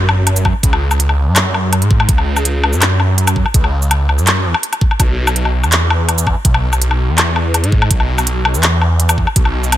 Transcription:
Already playing: detuned saw bass F#2, sub drop
0.09 low woodblock
0.27 closed hi-hat, low woodblock
0.36 closed hi-hat, shaker
0.45 kick, low woodblock
0.63 detuned saw bass C#2, kick, closed hi-hat
0.73 low woodblock
0.91 low woodblock, shaker
1.00 closed hi-hat
1.09 low woodblock
1.27 detuned saw bass F#2
1.36 clap, closed hi-hat, low woodblock
1.54 low woodblock
1.73 closed hi-hat, low woodblock
1.82 detuned saw bass G#2, closed hi-hat
1.91 kick
2.00 low woodblock
2.09 detuned saw bass C#2, kick, closed hi-hat
2.18 low woodblock
2.36 low woodblock, shaker
2.45 closed hi-hat
2.64 low woodblock
2.73 detuned saw bass F#2, shaker
2.82 clap, closed hi-hat, low woodblock
3.00 low woodblock
3.18 closed hi-hat
3.27 closed hi-hat, low woodblock, shaker
3.36 kick
3.46 low woodblock
3.54 detuned saw bass C#2, kick, closed hi-hat
3.64 low woodblock
3.82 shaker
3.91 closed hi-hat, low woodblock
4.09 low woodblock
4.18 detuned saw bass F#2, shaker
4.27 clap, closed hi-hat, low woodblock
4.45 detuned saw bass E2
4.54 low woodblock
4.63 closed hi-hat
4.73 closed hi-hat, low woodblock
4.81 kick
4.91 low woodblock
5.00 detuned saw bass B1, kick, closed hi-hat, low woodblock
5.27 low woodblock, shaker
5.36 closed hi-hat
5.45 low woodblock
5.64 detuned saw bass E2, low woodblock, shaker
5.72 clap, closed hi-hat
5.90 low woodblock
6.09 closed hi-hat, low woodblock
6.18 closed hi-hat, shaker
6.27 kick, low woodblock
6.45 detuned saw bass B1, kick, closed hi-hat
6.54 low woodblock
6.73 low woodblock, shaker
6.82 closed hi-hat
6.91 low woodblock
7.09 detuned saw bass E2
7.18 clap, closed hi-hat, low woodblock
7.36 low woodblock
7.54 closed hi-hat, low woodblock
7.64 detuned saw bass G#2, closed hi-hat
7.72 kick
7.82 low woodblock
7.91 detuned saw bass B1, kick, closed hi-hat
8.00 low woodblock
8.18 low woodblock, shaker
8.27 closed hi-hat
8.45 low woodblock
8.54 detuned saw bass E2, shaker
8.63 clap, closed hi-hat, low woodblock
8.82 low woodblock
9.00 closed hi-hat
9.09 closed hi-hat, low woodblock, shaker
9.18 kick
9.27 low woodblock
9.36 detuned saw bass B1, kick, closed hi-hat
9.45 low woodblock
9.64 shaker
9.72 closed hi-hat, low woodblock

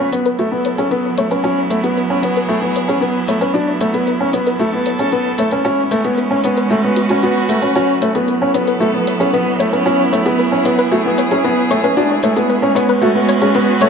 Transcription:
Already playing: analog synth bass F#1, string quartet F#3 B3 C#4 F#4 B4
0.12 grand piano B3, synth arpeggio sound C#5, closed hi-hat
0.26 string quartet E4 A4, synth arpeggio sound B4, closed hi-hat
0.39 grand piano A3, synth arpeggio sound F#4, closed hi-hat
0.52 grand piano B3
0.65 synth arpeggio sound C#5, closed hi-hat
0.78 grand piano C#4, synth arpeggio sound G#4, closed hi-hat
0.91 grand piano B3, synth arpeggio sound B4, closed hi-hat
1.18 grand piano A3, synth arpeggio sound C#5, closed hi-hat
1.31 grand piano C#4, synth arpeggio sound B4, closed hi-hat
1.44 analog synth bass C#2, grand piano C#4, synth arpeggio sound F#4, closed hi-hat
1.70 grand piano A3, synth arpeggio sound C#5, closed hi-hat
1.83 grand piano B3, synth arpeggio sound G#4, closed hi-hat
1.97 string quartet G#4, synth arpeggio sound B4, closed hi-hat
2.10 grand piano C#4
2.23 grand piano B3, synth arpeggio sound C#5, closed hi-hat
2.36 synth arpeggio sound B4, closed hi-hat
2.48 grand piano A3, synth arpeggio sound F#4, closed hi-hat
2.62 grand piano B3
2.76 synth arpeggio sound C#5, closed hi-hat
2.88 grand piano C#4, synth arpeggio sound G#4, closed hi-hat
3.01 grand piano B3, synth arpeggio sound B4, closed hi-hat
3.28 grand piano A3, synth arpeggio sound C#5, closed hi-hat
3.41 grand piano C#4, synth arpeggio sound B4, closed hi-hat
3.54 analog synth bass D2, grand piano D4, synth arpeggio sound F#4, closed hi-hat
3.81 grand piano A3, synth arpeggio sound C#5, closed hi-hat
3.94 grand piano B3, synth arpeggio sound A4, closed hi-hat
4.07 synth arpeggio sound B4, closed hi-hat
4.21 grand piano C#4
4.33 grand piano B3, synth arpeggio sound C#5, closed hi-hat
4.47 string quartet A4, synth arpeggio sound B4, closed hi-hat
4.59 grand piano A3, synth arpeggio sound F#4, closed hi-hat
4.73 grand piano B3
4.86 synth arpeggio sound C#5, closed hi-hat
4.99 grand piano C#4, synth arpeggio sound G#4, closed hi-hat
5.12 grand piano B3, synth arpeggio sound B4, closed hi-hat
5.38 grand piano A3, synth arpeggio sound C#5, closed hi-hat
5.51 grand piano C#4, synth arpeggio sound B4, closed hi-hat
5.65 analog synth bass A1, string quartet G#3, grand piano C#4, synth arpeggio sound F#4, closed hi-hat
5.75 string quartet C#4
5.91 grand piano A3, synth arpeggio sound C#5, closed hi-hat
6.04 grand piano B3, synth arpeggio sound A4, closed hi-hat
6.18 synth arpeggio sound B4, closed hi-hat
6.31 grand piano C#4
6.44 grand piano B3, synth arpeggio sound C#5, closed hi-hat
6.57 string quartet F#4 B4, synth arpeggio sound B4, closed hi-hat
6.70 grand piano A3, synth arpeggio sound F#4, closed hi-hat
6.84 grand piano B3
6.96 synth arpeggio sound F#4, closed hi-hat
7.09 grand piano C#4, synth arpeggio sound F#4, closed hi-hat
7.23 grand piano B3, synth arpeggio sound F#4, closed hi-hat
7.49 grand piano A3, synth arpeggio sound A4, closed hi-hat
7.62 grand piano C#4, synth arpeggio sound B4, closed hi-hat
7.76 analog synth bass F#1, string quartet F#3, grand piano C#4, synth arpeggio sound F#4, closed hi-hat
8.02 grand piano A3, string quartet B3 E4, synth arpeggio sound C#5, closed hi-hat
8.15 grand piano B3, synth arpeggio sound A4, closed hi-hat
8.28 synth arpeggio sound B4, closed hi-hat
8.34 string quartet A4
8.42 grand piano C#4
8.54 grand piano B3, synth arpeggio sound C#5, closed hi-hat
8.68 synth arpeggio sound B4, closed hi-hat
8.80 grand piano A3, synth arpeggio sound F#4, closed hi-hat
8.94 grand piano B3
9.07 synth arpeggio sound C#5, closed hi-hat
9.20 grand piano C#4, synth arpeggio sound G#4, closed hi-hat
9.33 grand piano B3, synth arpeggio sound B4, closed hi-hat
9.59 grand piano A3, synth arpeggio sound C#5, closed hi-hat
9.73 grand piano C#4, synth arpeggio sound B4, closed hi-hat
9.86 analog synth bass C#2, grand piano C#4, synth arpeggio sound F#4, closed hi-hat
10.12 grand piano A3, synth arpeggio sound C#5, closed hi-hat
10.26 grand piano B3, synth arpeggio sound G#4, closed hi-hat
10.35 string quartet G#4
10.39 synth arpeggio sound B4, closed hi-hat
10.52 grand piano C#4
10.65 grand piano B3, synth arpeggio sound C#5, closed hi-hat
10.78 synth arpeggio sound B4, closed hi-hat
10.91 grand piano A3, synth arpeggio sound F#4, closed hi-hat
11.06 grand piano B3
11.18 synth arpeggio sound C#5, closed hi-hat
11.31 grand piano C#4, synth arpeggio sound G#4, closed hi-hat
11.44 grand piano B3, synth arpeggio sound B4, closed hi-hat
11.71 grand piano A3, synth arpeggio sound C#5, closed hi-hat
11.84 grand piano C#4, synth arpeggio sound B4, closed hi-hat
11.97 analog synth bass D2, string quartet G#3, grand piano D4, synth arpeggio sound F#4, closed hi-hat
12.10 string quartet C#4
12.23 grand piano A3, synth arpeggio sound C#5, closed hi-hat
12.36 grand piano B3, synth arpeggio sound A4, closed hi-hat
12.49 synth arpeggio sound B4, closed hi-hat
12.62 grand piano C#4
12.75 grand piano B3, synth arpeggio sound C#5, closed hi-hat
12.89 string quartet F#4 B4, synth arpeggio sound B4, closed hi-hat
13.02 grand piano A3, synth arpeggio sound F#4, closed hi-hat
13.15 grand piano B3
13.29 synth arpeggio sound C#5, closed hi-hat
13.42 grand piano C#4, synth arpeggio sound G#4, closed hi-hat
13.55 grand piano B3, synth arpeggio sound B4, closed hi-hat
13.81 grand piano A3, synth arpeggio sound C#5, closed hi-hat

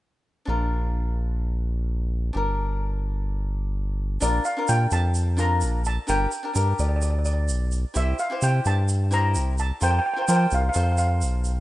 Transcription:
0.45 analog synth bass A#1, cavaquinho D4 F4 A#4
2.33 analog synth bass G1, cavaquinho D4 G4 A#4
4.20 analog synth bass A#1, cavaquinho D4 F4 A#4, steel pan D5, shaker
4.45 steel pan F5, shaker
4.57 cavaquinho D4 F4 A#4
4.68 analog synth bass A#2, steel pan G5, shaker
4.91 analog synth bass F2, steel pan A5, shaker
5.15 shaker
5.37 cavaquinho D4 F4 A#4, steel pan A#5, shaker
5.61 analog synth bass A#1, shaker
5.85 steel pan A5, shaker
6.07 analog synth bass G1, cavaquinho D4 G4 A#4, steel pan G5, shaker
6.32 shaker
6.43 cavaquinho D4 G4 A#4
6.53 analog synth bass G2, cavaquinho D4 G4 A#4, shaker
6.79 analog synth bass D2, steel pan D5, shaker
6.89 steel pan D5
6.96 steel pan D5
7.02 steel pan D5, shaker
7.10 steel pan D5
7.19 steel pan D5
7.25 steel pan D5, shaker
7.34 steel pan D5
7.48 analog synth bass B1, shaker
7.72 shaker
7.94 analog synth bass C2, cavaquinho E4 G4 C5, steel pan E5, shaker
8.19 steel pan F5, shaker
8.30 cavaquinho E4 G4 C5
8.42 analog synth bass C3, steel pan G5, shaker
8.65 analog synth bass G2, steel pan A5, shaker
8.88 shaker
9.11 cavaquinho E4 G4 C5, steel pan A#5, shaker
9.35 analog synth bass C2, shaker
9.58 steel pan A5, shaker
9.81 analog synth bass F2, cavaquinho F4 A#4 C5, steel pan G5, shaker
9.91 steel pan G5
9.99 steel pan G5
10.06 steel pan G5
10.14 cavaquinho F4 A#4, steel pan G5
10.18 cavaquinho C5, steel pan G5
10.28 analog synth bass F3, cavaquinho F4 A#4 C5, steel pan G5, shaker
10.36 steel pan G5
10.51 analog synth bass C2, steel pan F5, shaker
10.61 steel pan F5
10.69 steel pan F5
10.74 analog synth bass F2, cavaquinho F4 A4 C5, steel pan F5, shaker
10.84 steel pan F5
10.92 steel pan F5
10.98 steel pan F5, shaker
11.07 steel pan F5
11.21 analog synth bass B1, shaker
11.45 shaker

